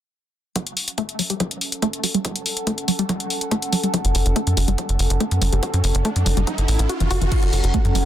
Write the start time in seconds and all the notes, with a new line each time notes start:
0.56 F#3 C#4, kick, closed hi-hat
0.67 closed hi-hat
0.77 open hi-hat
0.88 closed hi-hat
0.98 A3 A4, kick, closed hi-hat
1.09 closed hi-hat
1.16 F#3 A5, open hi-hat
1.30 G3, closed hi-hat
1.40 F#3, kick, closed hi-hat
1.51 closed hi-hat
1.61 F#5, open hi-hat
1.72 closed hi-hat
1.82 A3, kick, closed hi-hat
1.93 closed hi-hat
2.04 F#3, open hi-hat
2.14 G3, closed hi-hat
2.25 F#3, kick, closed hi-hat
2.36 closed hi-hat
2.46 open hi-hat
2.57 closed hi-hat
2.67 A3, kick, closed hi-hat
2.78 closed hi-hat
2.88 F#3, open hi-hat
2.99 G3, closed hi-hat
3.09 F#3, kick, closed hi-hat
3.20 closed hi-hat
3.30 open hi-hat
3.41 closed hi-hat
3.51 A3, kick, closed hi-hat
3.62 closed hi-hat
3.73 F#3, open hi-hat
3.83 G3, closed hi-hat
3.94 F#3, kick, closed hi-hat, riser
4.05 F#1, closed hi-hat
4.15 F#1, open hi-hat
4.26 F#1, closed hi-hat
4.36 A3, kick, closed hi-hat
4.47 F#2, closed hi-hat
4.57 F#1 F#3, open hi-hat
4.68 F#1 G3, closed hi-hat
4.78 F#3, kick, closed hi-hat
4.89 F#1, closed hi-hat
4.99 F#1, open hi-hat
5.10 F#1, closed hi-hat
5.20 A3, kick, closed hi-hat
5.31 F#2, closed hi-hat
5.42 F#1 F#3, open hi-hat
5.52 F#1 G3, closed hi-hat
5.63 F#3, kick, closed hi-hat
5.74 F#2, closed hi-hat
5.84 F#1, open hi-hat
5.95 F#1, closed hi-hat
6.05 A3, kick, closed hi-hat
6.16 F#2, closed hi-hat
6.26 F#1 F#3, open hi-hat
6.37 F#1 G3, closed hi-hat
6.47 F#3, kick, closed hi-hat
6.58 G1, closed hi-hat
6.68 A1, open hi-hat
6.79 A1, closed hi-hat
6.89 F#4, closed hi-hat
7.00 F#1 E3, closed hi-hat
7.11 F#1 F#4, open hi-hat
7.21 F#1 E3, closed hi-hat
7.32 F#3 C#4, kick, closed hi-hat, crash
7.43 F#1, closed hi-hat
7.53 F#1, open hi-hat
7.64 F#1, closed hi-hat
7.74 A3, kick, closed hi-hat
7.85 F#2, closed hi-hat
7.95 F#1 F#3, open hi-hat